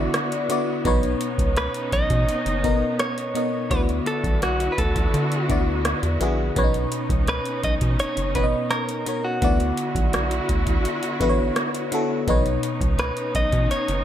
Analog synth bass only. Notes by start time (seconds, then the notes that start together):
0.85 B1
1.38 C#2
1.92 B1
2.10 B2
2.28 F#1
2.46 F#1
3.71 D2
4.24 B1
4.78 D2
5.14 D3
5.49 D2
6.03 E2
6.21 A#1
6.56 B1
7.09 C#2
7.64 B1
7.82 B2
7.99 F#1
8.17 F#1
9.42 D2
9.95 B1
10.49 D2
11.21 A1
12.28 B1
12.81 C#2
13.35 B1
13.53 B2
13.71 F#1
13.89 F#1